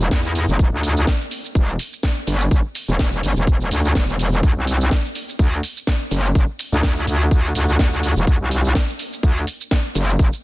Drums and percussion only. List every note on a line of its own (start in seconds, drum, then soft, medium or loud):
0.01 shaker soft
0.11 kick loud
0.11 snare loud
0.11 shaker soft
0.25 shaker soft
0.35 open hi-hat loud
0.35 shaker medium
0.49 shaker soft
0.59 kick loud
0.59 shaker soft
0.83 open hi-hat loud
0.83 shaker medium
0.97 shaker soft
1.07 kick loud
1.07 snare loud
1.07 shaker soft
1.21 shaker soft
1.31 open hi-hat loud
1.31 shaker medium
1.45 shaker soft
1.55 kick loud
1.55 shaker soft
1.69 shaker soft
1.79 open hi-hat loud
1.79 shaker medium
1.93 shaker soft
2.03 kick loud
2.03 snare loud
2.03 shaker soft
2.27 open hi-hat loud
2.27 shaker medium
2.41 shaker soft
2.51 kick loud
2.51 shaker soft
2.75 open hi-hat loud
2.75 shaker medium
2.89 shaker soft
2.99 kick loud
2.99 snare loud
2.99 shaker soft
3.13 shaker soft
3.23 open hi-hat loud
3.23 shaker medium
3.37 shaker soft
3.47 kick loud
3.47 shaker soft
3.61 shaker soft
3.71 open hi-hat loud
3.71 shaker medium
3.85 shaker soft
3.95 kick loud
3.95 snare loud
3.95 shaker soft
4.09 shaker soft
4.19 open hi-hat loud
4.19 shaker medium
4.33 shaker soft
4.43 kick loud
4.43 shaker soft
4.67 open hi-hat loud
4.67 shaker medium
4.81 shaker soft
4.91 kick loud
4.91 snare loud
4.91 shaker soft
5.05 shaker soft
5.15 open hi-hat loud
5.15 shaker medium
5.29 shaker soft
5.39 kick loud
5.39 shaker soft
5.53 shaker soft
5.63 open hi-hat loud
5.63 shaker medium
5.77 shaker soft
5.87 kick loud
5.87 snare loud
5.87 shaker soft
6.11 open hi-hat loud
6.11 shaker medium
6.25 shaker soft
6.35 kick loud
6.35 shaker soft
6.59 open hi-hat loud
6.59 shaker medium
6.73 shaker soft
6.83 kick loud
6.83 snare loud
6.83 shaker soft
6.97 shaker soft
7.07 open hi-hat loud
7.07 shaker medium
7.21 shaker soft
7.31 kick loud
7.31 shaker soft
7.45 shaker soft
7.55 open hi-hat loud
7.55 shaker medium
7.69 shaker soft
7.79 kick loud
7.79 snare loud
7.79 shaker soft
7.93 shaker soft
8.03 open hi-hat loud
8.03 shaker medium
8.17 shaker soft
8.27 kick loud
8.27 shaker soft
8.51 open hi-hat loud
8.51 shaker medium
8.65 shaker soft
8.75 kick loud
8.75 snare loud
8.75 shaker soft
8.89 shaker soft
8.99 open hi-hat loud
8.99 shaker medium
9.13 shaker soft
9.23 kick loud
9.23 shaker soft
9.37 shaker soft
9.47 open hi-hat loud
9.47 shaker medium
9.61 shaker soft
9.71 kick loud
9.71 snare loud
9.71 shaker soft
9.95 open hi-hat loud
9.95 shaker medium
10.09 shaker soft
10.19 kick loud
10.19 shaker soft
10.33 shaker soft